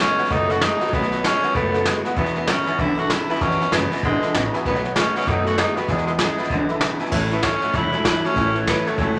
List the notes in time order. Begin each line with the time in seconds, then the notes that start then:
0.00 B2 D#3 G#3 A3 B3 C#4 F#4 B4 D#5 G#5
0.17 B2 F#3 A3 B3 F#4 B4 D#5 F#5, muted upright bass stroke, snare
0.25 snare
0.29 F#1 B2 D#3 A3 B3 D#4 F#4 B4 D#5 F#5, kick, snare
0.48 B3 F#4 B4 D#5 G#5, snare
0.53 A3
0.60 B2 D#3 G#3 A3 B3 D#4 F#4 B4 D#5 G#5, snare, hi-hat pedal
0.80 B2 F#3 B3 F#4 B4 D#5 A5, muted upright bass stroke, snare
0.85 A3, snare
0.93 B1 B2 D#3 F#3 A3 B3 F#4 B4 D#5 F#5, kick, snare
1.03 snare
1.11 A3 B3 F#4 B4 D#5 A5, snare
1.23 B2 D#3 G#3 A3 B3 C#4 F#4 B4 D#5 F#5, snare, hi-hat pedal
1.43 B2 F#3 A3 B3 F#4 B4 D#5 F#5, muted upright bass stroke, snare
1.54 F#1 B2 D#3 A3 B3 F#4 B4 D#5 F#5, kick, snare
1.73 A3 B3 F#4 B4 D#5 F#5, snare
1.85 B2 D#3 G#3 A3 B3 F#4 B4 D#5 F#5, snare, hi-hat pedal
2.05 B2 F#3 A3 B3 F#4 B4 D#5 F#5, snare
2.16 E2 B2 E3 G#3 B3 E4 B4 E5 G#5, kick, snare
2.26 snare
2.35 E3 G#3 B3 E4 B4 E5 G#5, snare
2.46 E2 C#3 E3 G#3 C#4 B4 E5 G#5, snare, hi-hat pedal
2.50 B3 E4
2.66 E2 B2 G#3 B3 E4 B4 E5 G#5, muted upright bass stroke, snare
2.70 E3
2.77 B1 E2 B2 D3 E3 G#3 B3 E4 B4 E5 G#5, kick, snare
2.97 G#3 B3 E4 F#4 B4 E5 F#5, snare
3.01 E3
3.09 E2 C#3 E3 G#3 B3 E4 B4 E5 G#5, snare, hi-hat pedal
3.29 E2 B2 E3 G#3 B3 E4 B4 E5 G#5, muted upright bass stroke, snare
3.36 snare
3.40 E2 B2 E3 G#3 B3 C#4 E4 B4 E5 G#5, kick, snare
3.52 snare
3.60 E3 G#3 B3 E4 B4 E5 F#5, snare
3.72 F#1 E2 C#3 E3 G#3 B3 E4 B4 E5 G#5, snare, hi-hat pedal
3.91 E2 B2 G#3 B3 E4 B4 E5 G#5, muted upright bass stroke, snare
3.95 E3, snare
4.02 G#1 E2 B2 D3 E3 G#3 B3 E4 B4 E5 B5, kick, snare
4.22 G#3 B3 E4 B4 E5 G#5, muted upright bass stroke, snare
4.26 E3
4.34 A1 E2 C#3 E3 G#3 B3 E4 B4 E5 G#5, snare, hi-hat pedal
4.53 E2 B2 E3 G#3 B3 E4 B4 E5 G#5, muted upright bass stroke, snare
4.65 B1 B2 D#3 F#3 A3 B3 F#4 B4 D#5 F#5, kick, snare
4.75 snare
4.84 A3 B3 F#4 B4 D#5 F#5, snare
4.96 B2 D#3 G#3 A3 B3 C#4 F#4 B4 D#5 G#5, snare, hi-hat pedal
5.15 B2 F#3 A3 B3 C#4 F#4 B4 D#5 F#5, muted upright bass stroke, snare
5.21 snare
5.26 F#2 B2 D#3 A3 B3 D#4 F#4 B4 D#5 F#5, kick, snare
5.44 A3 B3 F#4 B4, snare
5.49 D#5 F#5
5.57 B2 D#3 G#3 A3 B3 D#4 F#4 B4 D#5 A5, snare, hi-hat pedal
5.75 B2 F#3 A3 B3 F#4 B4 D#5 F#5, muted upright bass stroke, snare
5.87 E2 B2 E3 G#3 B3 E4 B4 E5 G#5, kick, snare
5.98 snare
6.07 E3 G#3 B3 E4 B4 E5 G#5, snare
6.19 E2 C#3 E3 G#3 B3 E4 B4 E5 G#5, snare, hi-hat pedal
6.38 E2 B2 E3 G#3 B3 E4 B4 E5 B5, muted upright bass stroke, snare
6.44 snare
6.50 B1 E2 B2 D3 E3 G#3 B3 E4 B4 E5 G#5, kick, snare
6.69 E3 G#3 B3 E4 B4 E5 B5, snare
6.80 E2 C#3 E3 G#3 B3 B4 E5 B5, snare, hi-hat pedal
6.84 E4
6.99 E2 B2 E3 G#3 B3 E4 B4 E5 G#5, muted upright bass stroke, snare
7.06 snare
7.11 A1 A2 E3 A3 C#4 E4 C#5 E5 A5, kick, snare, crash
7.31 A2 E3 A3 B3 C#4 E4 C#5 E5 A5, snare
7.43 A2 E3 F#3 A3 C#4 E4 C#5 E5 A5, kick, snare, hi-hat pedal
7.62 A2 F#3 A3 C#4 E4 C#5 E5 F#5, muted upright bass stroke, snare
7.73 E1 A2 E3 F#3 A3 C#4 E4 C#5 E5 A5, kick, snare
7.92 A2 F#3 A3 C#4 E4 C#5 E5 G#5, snare
8.04 A2 E3 F#3 A3 C#4 E4 C#5 E5 A5, kick, snare, hi-hat pedal
8.23 A2 F#3 A3 C#4 E4 C#5 E5 A5, muted upright bass stroke, snare
8.35 A1 A2 E3 A3 C#4 E4 C#5 E5 G#5, kick, snare
8.53 A2 E3 A3 C#4 E4 C#5 E5 A5, snare
8.66 A2 E3 F#3 A3 B3 C#4 C#5 E5 A5, kick, snare, hi-hat pedal
8.84 A2 F#3 A3 C#4 E4 C#5 E5 A5, muted upright bass stroke, snare
8.88 A3
8.97 E1 A2 E3 F#3 A3 C#4 E4 C#5 E5 G#5, kick, snare
9.16 E4